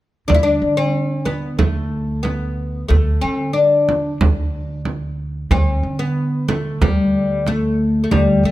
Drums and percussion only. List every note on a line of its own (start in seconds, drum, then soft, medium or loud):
0.30 frame drum medium
1.26 frame drum medium
1.59 frame drum medium
2.25 frame drum soft
2.90 frame drum medium
3.89 frame drum medium
4.21 frame drum medium
4.85 frame drum medium
5.51 frame drum medium
6.49 frame drum medium
6.82 frame drum medium
7.47 frame drum medium
8.12 frame drum medium